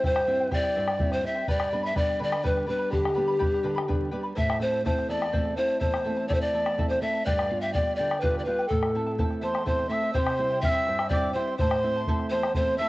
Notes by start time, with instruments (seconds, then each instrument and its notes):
Already playing: nylon-string guitar G3 C4 E4
0.04 nylon-string guitar G2, charango E4 C5 E5 G5, pan flute C5, bombo low
0.16 bombo rim
0.27 nylon-string guitar G3 C4 E4, charango E4 C5 E5 G5
0.40 charango E4 C5 G5
0.51 nylon-string guitar G3 C4 E4, charango E4 G4 C5 E5 G5, pan flute D5, bombo rim, bombo low
0.64 bombo rim
0.76 nylon-string guitar G2, charango E4 C5 E5 G5
0.88 charango E4 C5 G5, bombo rim
0.99 nylon-string guitar G3 C4 E4, charango E4 C5 E5 G5, bombo low
1.12 pan flute C5, bombo rim
1.23 nylon-string guitar G3 C4 E4, charango E4 C5 E5 G5, pan flute E5
1.34 charango E4 C5 G5
1.48 nylon-string guitar G2, charango G4 B4 D5 G5 B5, pan flute D5, bombo low
1.60 bombo rim
1.71 nylon-string guitar G3 B3 D4, charango B4 D5 G5 B5
1.83 charango B4 D5 B5, pan flute E5
1.94 nylon-string guitar G3 B3 D4, charango B4 D5 G5 B5, pan flute D5, bombo rim, bombo low
2.09 bombo rim
2.19 nylon-string guitar D3, charango B4 D5 G5 B5
2.23 pan flute D5
2.32 charango B4 D5 B5, bombo rim
2.43 nylon-string guitar G3 B3 D4, charango G4 B4 D5 G5 B5, pan flute B4, bombo low
2.57 bombo rim
2.66 nylon-string guitar G3 B3 D4, charango B4 D5 G5 B5, pan flute B4
2.78 charango B4 D5 B5
2.90 nylon-string guitar D3, pan flute G4, charango B4 D5 G5 B5, bombo rim, bombo low
3.05 bombo rim
3.15 nylon-string guitar G3 B3 D4, charango B4 D5 G5 B5
3.27 charango B4 D5 B5
3.39 nylon-string guitar G3 B3 D4, charango G4 B4 D5 G5 B5, bombo low
3.54 bombo rim
3.63 nylon-string guitar D3, charango B4 D5 G5 B5, bombo rim
3.75 charango B4 D5 B5, bombo rim
3.88 nylon-string guitar G3 B3 D4, charango B4 D5 G5 B5, bombo rim, bombo low
4.11 nylon-string guitar G3 B3 D4, charango B4 D5 G5 B5
4.23 charango B4 D5 B5
4.35 nylon-string guitar A2, charango E4 A4 C5 E5 A5, pan flute E5, bombo low
4.50 bombo rim
4.60 nylon-string guitar A3 C4 E4, charango E4 A4 E5 A5, pan flute C5
4.72 charango E4 A4 A5
4.84 nylon-string guitar A3 C4 E4, charango E4 A4 E5 A5, pan flute C5, bombo rim, bombo low
4.98 bombo rim
5.08 nylon-string guitar E2, charango E4 A4 E5 A5, pan flute D5
5.21 charango E4 A4 A5, bombo rim
5.33 nylon-string guitar A3 C4 E4, charango E4 A4 C5 E5 A5, bombo low
5.45 bombo rim
5.57 nylon-string guitar A3 C4 E4, charango E4 A4 E5 A5, pan flute C5
5.68 charango E4 A4 A5
5.80 nylon-string guitar E2, charango E4 A4 E5 A5, pan flute C5, bombo low
5.94 bombo rim
6.05 nylon-string guitar A3 C4 E4, charango E4 A4 E5 A5
6.17 charango E4 A4 A5
6.29 nylon-string guitar A3 C4 E4, charango E4 A4 C5 E5 A5, pan flute D5, bombo rim, bombo low
6.35 pan flute C5
6.42 pan flute D5, bombo rim
6.53 nylon-string guitar E2, charango E4 A4 E5 A5
6.65 charango E4 A4 A5, bombo rim
6.78 nylon-string guitar A3 C4 E4, charango E4 A4 E5 A5, bombo low
6.89 pan flute C5, bombo rim
7.01 nylon-string guitar A3 C4 E4, charango E4 A4 E5 A5, pan flute E5
7.13 charango E4 A4 A5
7.25 nylon-string guitar G2, charango G4 B4 D5 F5 G5, pan flute D5, bombo low
7.39 bombo rim
7.49 nylon-string guitar G3 B3 F4, charango G4 D5 F5 G5
7.61 charango G4 D5 G5, pan flute E5
7.73 nylon-string guitar G3 B3 F4, charango G4 D5 F5 G5, pan flute D5, bombo rim, bombo low
7.87 bombo rim
7.96 nylon-string guitar D3, charango G4 D5 F5 G5, pan flute D5
8.10 charango G4 D5 G5, bombo rim
8.21 nylon-string guitar G3 B3 F4, charango G4 B4 D5 F5 G5, pan flute B4, bombo low
8.35 pan flute D5, bombo rim
8.45 nylon-string guitar G3 B3 F4, charango G4 D5 F5 G5, pan flute B4
8.59 charango G4 D5 G5
8.68 nylon-string guitar A2, charango E4 A4 E5 A5, pan flute A4, bombo rim, bombo low
8.83 bombo rim
8.95 nylon-string guitar A3 C4 E4, charango E4 A4 E5 A5
9.06 charango E4 A4 A5
9.18 nylon-string guitar A3 C4 E4, charango E4 A4 C5 E5 A5, bombo low
9.31 bombo rim
9.41 nylon-string guitar E2, charango E4 A4 E5 A5, pan flute C5, quena C6
9.54 charango E4 A4 A5, bombo rim
9.65 nylon-string guitar A3 C4 E4, charango E4 A4 E5 A5, pan flute C5, quena C6, bombo low
9.79 bombo rim
9.89 nylon-string guitar A3 C4 E4, charango E4 A4 E5 A5, pan flute E5, quena E6, bombo rim
10.03 charango E4 A4 A5
10.13 nylon-string guitar C3, charango E4 G4 C5 E5 G5, pan flute C5, bombo low
10.18 quena C6
10.27 bombo rim
10.38 nylon-string guitar G3 C4 E4, charango E4 C5 E5 G5
10.50 charango E4 C5 G5
10.61 nylon-string guitar G3 C4 E4, charango E4 C5 E5 G5, pan flute E5, quena F6, bombo low
10.69 quena E6
10.75 bombo rim
10.87 nylon-string guitar G2, charango E4 C5 E5 G5, bombo rim
10.99 charango E4 C5 G5, bombo rim
11.09 nylon-string guitar G3 C4 E4, charango E4 G4 C5 E5 G5, pan flute D5, quena D6, bombo low
11.33 nylon-string guitar G3 C4 E4, charango E4 C5 E5 G5, pan flute C5, quena C6
11.47 charango E4 C5 G5
11.57 nylon-string guitar A2, charango E4 C5 E5 A5, pan flute C5, quena C6, bombo low
11.71 bombo rim
11.83 nylon-string guitar A3 C4 E4, charango E4 C5 E5 A5
11.96 charango E4 C5 A5
12.07 nylon-string guitar A3 C4 E4, charango E4 A4 C5 E5 A5, bombo low
12.20 bombo rim
12.30 nylon-string guitar E2, charango E4 C5 E5 A5, pan flute C5, quena C6, bombo rim
12.43 charango E4 C5 A5, bombo rim
12.54 nylon-string guitar A3 C4 E4, charango E4 C5 E5, pan flute C5, quena C6, bombo low
12.58 charango A5
12.78 nylon-string guitar A3 C4 E4, charango E4 C5 E5 A5, pan flute E5, quena E6